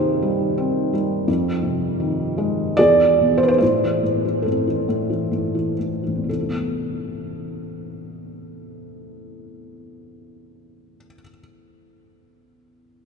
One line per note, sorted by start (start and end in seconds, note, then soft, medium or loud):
0.00 1.23 D#2 medium
0.00 0.89 C3 soft
0.00 1.24 D#3 soft
0.00 2.74 D#4 medium
0.00 2.74 G4 medium
0.00 1.30 A#4 medium
0.00 2.74 C5 medium
0.23 0.92 G3 medium
0.58 1.26 C4 medium
0.93 1.27 G3 medium
1.28 2.74 F2 medium
1.63 2.74 C3 medium
2.00 2.76 D#3 soft
2.38 2.77 G#3 medium
2.77 3.59 E2 medium
2.77 3.58 G#4 medium
2.77 3.42 D5 loud
3.20 3.60 B2 medium
3.38 3.44 C5 medium
3.43 3.50 B4 medium
3.48 3.57 C5 medium
3.58 4.02 A2 soft
3.58 4.46 C5 medium
3.62 4.85 E4 soft
3.83 4.24 E3 soft
4.03 4.44 A2 soft
4.25 4.66 E3 soft
4.42 4.87 A2 soft
4.42 5.75 C4 soft
4.42 5.73 A4 soft
4.67 5.08 E3 soft
4.89 5.30 A2 soft
5.10 5.53 E3 soft
5.31 5.77 A2 soft
5.55 6.02 E3 soft
5.79 6.27 A2 soft
6.04 10.97 A1 soft
6.04 6.28 E3 soft
6.15 11.05 E2 soft
6.24 11.13 C3 soft
6.29 11.22 E3 soft
6.29 11.19 A4 soft
6.41 11.30 A3 soft
6.49 11.38 B3 soft